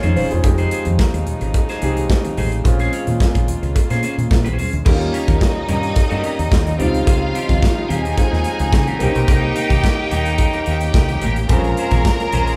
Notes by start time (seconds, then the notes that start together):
Already playing: C#3 G#3 A#3 C4 C#4 F4 C#5 F5
0.03 F2 C4 C#4 D#4 G#4 C5, closed hi-hat, high conga
0.16 D#1 C#4 F4 G#4 C5, open hi-hat, muted conga, low conga
0.31 E1 F4 G#4, muted clean electric guitar stroke, closed hi-hat
0.43 F1 F3 G3 G#3 C4 D#4 G4, muted clean electric guitar stroke, kick, closed hi-hat, cowbell, muted conga
0.49 G#3
0.58 D#4 G#4 C5, closed hi-hat
0.71 D#4 G#4 C5, closed hi-hat, muted conga
0.85 F2, muted clean electric guitar stroke, closed hi-hat, high conga
0.99 muted clean electric guitar stroke, kick, snare, cowbell
1.14 D#2, muted clean electric guitar stroke, closed hi-hat
1.27 closed hi-hat, muted conga, high conga, low conga
1.41 G#1, muted clean electric guitar stroke, closed hi-hat
1.54 muted clean electric guitar stroke, kick, closed hi-hat, cowbell
1.69 D#4 G#4 C5, snare, closed hi-hat
1.82 C2 G#3 C4 D#4 G4 G#4 C5, closed hi-hat, muted conga
1.97 muted clean electric guitar stroke, closed hi-hat, high conga
2.10 kick, snare, cowbell
2.25 muted clean electric guitar stroke, closed hi-hat, high conga
2.37 A1 D#4 G#4 C5, open hi-hat, low conga
2.52 muted clean electric guitar stroke, closed hi-hat
2.64 A#1 G#3 A#3 C4 C#4 F4, muted clean electric guitar stroke, kick, closed hi-hat, cowbell, muted conga
2.79 C#4 G#4 C5, closed hi-hat
2.92 C#4 G#4 C#5, closed hi-hat, muted conga
3.07 A#2, muted clean electric guitar stroke, closed hi-hat, high conga
3.20 muted clean electric guitar stroke, kick, snare, cowbell
3.35 A#1, muted clean electric guitar stroke, kick, closed hi-hat
3.48 closed hi-hat, high conga, low conga
3.63 C#2, muted clean electric guitar stroke, closed hi-hat
3.75 muted clean electric guitar stroke, kick, closed hi-hat, cowbell, muted conga
3.90 A#2 C#4 G#4 C5, snare, closed hi-hat
4.03 C#4 G#4 C5, closed hi-hat, muted conga
4.17 A#2, muted clean electric guitar stroke, closed hi-hat, high conga
4.31 A#2, muted clean electric guitar stroke, kick, snare, cowbell, muted conga
4.45 A#1 C#4 G#4 C5, closed hi-hat, high conga
4.58 C#4 G#4 C5, open hi-hat, low conga
4.72 D2, muted clean electric guitar stroke, closed hi-hat
4.85 D#2 C#3 G3 A#3 C#4 D#4 G4 A#4 D#5, kick, crash, cowbell
4.95 F4
5.00 muted clean electric guitar stroke, closed hi-hat
5.13 C#4 G4 A#4, closed hi-hat, muted conga
5.28 D#2 C#4 G4 A#4, kick, closed hi-hat, high conga
5.41 muted clean electric guitar stroke, kick, snare, cowbell
5.55 muted clean electric guitar stroke
5.69 G2 C#4 G4 A#4, closed hi-hat, muted conga, high conga, low conga
5.83 muted clean electric guitar stroke, closed hi-hat
5.96 muted clean electric guitar stroke, kick, closed hi-hat, cowbell, muted conga
6.10 G2 C#4 G4 A#4, closed hi-hat
6.23 C#4 G4 A#4, closed hi-hat, muted conga
6.38 D#2, muted clean electric guitar stroke, closed hi-hat, high conga
6.52 D#2, kick, snare, cowbell, muted conga
6.66 muted clean electric guitar stroke, closed hi-hat, high conga
6.78 C#2 C#3 D#3 F3 G3 C4 D#4 F4 G4 F5, closed hi-hat, low conga
6.94 muted clean electric guitar stroke, closed hi-hat
7.07 C#2 C4 F4 G#4, kick, closed hi-hat, cowbell, muted conga
7.34 C4 F4 G4, closed hi-hat, muted conga
7.49 C#2 C4 F4 G#4, kick, closed hi-hat, high conga
7.63 kick, snare, cowbell
7.77 muted clean electric guitar stroke
7.89 D#2 C4 F4 G4 G#4 G#5, closed hi-hat, high conga, low conga
8.04 C4 F4 G4, closed hi-hat
8.17 G#3 C4 D#4 F4, muted clean electric guitar stroke, kick, closed hi-hat, cowbell, muted conga
8.32 D#2, muted clean electric guitar stroke, snare
8.44 closed hi-hat, muted conga
8.59 C#2, muted clean electric guitar stroke, closed hi-hat, high conga
8.73 C#3, muted clean electric guitar stroke, kick, snare, cowbell, muted conga
8.87 C4 F4 G4, closed hi-hat, high conga
8.99 C2 A#3 C4 C#4 D#4 G4 G5, closed hi-hat, muted conga, low conga
9.03 G4
9.07 D#4
9.15 B1, muted clean electric guitar stroke, closed hi-hat
9.27 C2 A#3 D#4 G4, kick, closed hi-hat, cowbell, muted conga
9.44 muted clean electric guitar stroke
9.55 A#3 D#4 G4, closed hi-hat, muted conga
9.69 C2 A#3 D#4 G4, kick, closed hi-hat, high conga
9.83 muted clean electric guitar stroke, kick, snare, cowbell
9.97 muted clean electric guitar stroke
10.11 D#2 A#3 D#4 G4, closed hi-hat, high conga, low conga
10.26 muted clean electric guitar stroke, closed hi-hat
10.38 muted clean electric guitar stroke, kick, closed hi-hat, cowbell, muted conga
10.53 A#3 D#4 G4, closed hi-hat
10.66 D#2 A#3 D#4 G4 G5, closed hi-hat
10.81 muted clean electric guitar stroke, closed hi-hat, high conga
10.94 C2, kick, snare, cowbell, muted conga
11.09 muted clean electric guitar stroke, closed hi-hat, high conga
11.21 A1 A#3 D#4 G4, closed hi-hat, low conga
11.36 muted clean electric guitar stroke, closed hi-hat
11.48 A#1 G#3 A#3 C4 C#4 F4 G#4 A#4 C#5 A#5, kick, closed hi-hat, cowbell, low conga
11.64 closed hi-hat
11.77 C#4 G#4 C5, closed hi-hat
11.91 A#1 C#4 G#4 C#5, kick, closed hi-hat, high conga
12.04 muted clean electric guitar stroke, kick, snare, cowbell
12.20 muted clean electric guitar stroke, closed hi-hat
12.32 A#1 C#4 G#4 C5, closed hi-hat, muted conga, high conga, low conga
12.47 C#4 G#4 C5, closed hi-hat